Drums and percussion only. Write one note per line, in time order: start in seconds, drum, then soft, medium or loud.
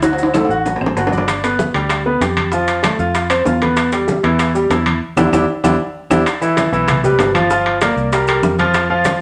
0.02 high bongo medium
0.02 high conga soft
0.02 high timbale medium
0.02 maracas medium
0.13 high timbale medium
0.18 high bongo soft
0.18 high conga soft
0.18 maracas medium
0.23 high timbale medium
0.34 high bongo medium
0.34 high conga loud
0.34 high timbale medium
0.34 claves medium
0.34 maracas medium
0.45 high timbale medium
0.50 maracas soft
0.66 low bongo medium
0.66 high conga soft
0.66 low timbale medium
0.66 maracas medium
0.76 low timbale medium
0.81 high conga soft
0.81 claves medium
0.86 low bongo medium
0.86 low timbale medium
0.97 high conga soft
0.97 low timbale loud
0.97 maracas medium
1.07 low bongo medium
1.07 low timbale medium
1.12 high conga medium
1.12 maracas soft
1.18 low bongo medium
1.18 low timbale medium
1.28 high bongo medium
1.28 high conga soft
1.28 high timbale medium
1.28 claves medium
1.28 maracas medium
1.44 high bongo soft
1.44 high conga soft
1.44 high timbale medium
1.44 maracas medium
1.59 high bongo medium
1.59 high conga loud
1.59 maracas medium
1.74 high bongo soft
1.74 high conga soft
1.74 high timbale medium
1.74 maracas soft
1.89 high bongo medium
1.89 high conga soft
1.89 high timbale medium
1.89 claves medium
1.89 maracas medium
2.06 high bongo soft
2.06 high conga soft
2.21 high bongo soft
2.21 low bongo medium
2.21 high conga soft
2.21 high timbale medium
2.21 maracas medium
2.37 high conga medium
2.37 high timbale medium
2.37 claves medium
2.37 maracas soft
2.52 high bongo medium
2.52 high conga soft
2.52 maracas medium
2.68 high bongo soft
2.68 high conga soft
2.68 high timbale medium
2.68 maracas medium
2.83 high bongo medium
2.83 high conga loud
2.83 high timbale medium
2.83 claves medium
2.83 maracas medium
2.99 high bongo soft
2.99 maracas soft
3.15 high bongo medium
3.15 high conga soft
3.15 high timbale medium
3.15 maracas medium
3.30 high bongo soft
3.30 high conga soft
3.30 high timbale medium
3.30 claves medium
3.30 maracas medium
3.45 high bongo soft
3.45 low bongo medium
3.45 high conga soft
3.45 low timbale medium
3.45 maracas medium
3.62 high conga medium
3.62 high timbale medium
3.62 maracas soft
3.77 high bongo medium
3.77 high conga soft
3.77 high timbale medium
3.77 claves medium
3.77 maracas medium
3.92 high bongo soft
3.92 high conga soft
3.92 high timbale medium
3.92 maracas medium
4.08 high bongo medium
4.08 high conga loud
4.08 maracas medium
4.23 high bongo soft
4.23 high conga soft
4.23 high timbale medium
4.23 maracas soft
4.39 high bongo medium
4.39 high conga soft
4.39 high timbale medium
4.39 claves medium
4.39 maracas medium
4.55 high bongo soft
4.55 high conga soft
4.55 maracas medium
4.70 high bongo soft
4.70 low bongo medium
4.70 high conga soft
4.70 high timbale medium
4.70 low timbale medium
4.70 maracas medium
4.86 high conga medium
4.86 high timbale medium
4.86 claves medium
4.86 maracas soft
5.17 low bongo loud
5.17 high conga loud
5.17 high timbale loud
5.17 claves loud
5.17 maracas loud
5.33 low bongo loud
5.33 high conga loud
5.33 high timbale medium
5.33 claves loud
5.33 maracas medium
5.64 low bongo loud
5.64 high conga medium
5.64 high timbale loud
5.64 claves loud
5.64 maracas medium
6.10 low bongo loud
6.10 high conga medium
6.10 high timbale medium
6.10 claves medium
6.10 maracas loud
6.26 high bongo medium
6.26 high conga soft
6.26 high timbale medium
6.26 claves medium
6.26 maracas medium
6.42 high conga soft
6.42 maracas medium
6.57 high bongo medium
6.57 high conga loud
6.57 high timbale medium
6.57 maracas medium
6.73 high conga soft
6.73 maracas soft
6.88 high bongo medium
6.88 high conga soft
6.88 low conga medium
6.88 high timbale medium
6.88 claves medium
6.88 maracas medium
7.04 high conga soft
7.04 low conga medium
7.04 maracas medium
7.19 high bongo medium
7.19 low bongo medium
7.19 high timbale medium
7.19 low timbale medium
7.19 maracas medium
7.35 high conga medium
7.35 high timbale medium
7.35 claves medium
7.35 maracas soft
7.50 high bongo medium
7.50 high conga soft
7.50 maracas medium
7.66 high bongo soft
7.66 high conga soft
7.66 high timbale medium
7.81 high bongo medium
7.81 high conga medium
7.81 high timbale medium
7.81 claves medium
7.81 maracas medium
7.97 high conga soft
7.97 maracas soft
8.12 high bongo medium
8.12 high conga soft
8.12 high timbale medium
8.12 maracas medium
8.27 high bongo soft
8.27 high conga soft
8.27 high timbale medium
8.27 claves medium
8.27 maracas medium
8.43 high bongo medium
8.43 low bongo medium
8.43 high conga medium
8.43 maracas medium
8.59 high bongo soft
8.59 high conga medium
8.59 high timbale medium
8.59 maracas soft
8.74 high bongo medium
8.74 high conga soft
8.74 high timbale medium
8.74 claves medium
8.74 maracas medium
8.90 high conga soft
9.05 high bongo medium
9.05 high conga loud
9.05 high timbale medium
9.05 maracas medium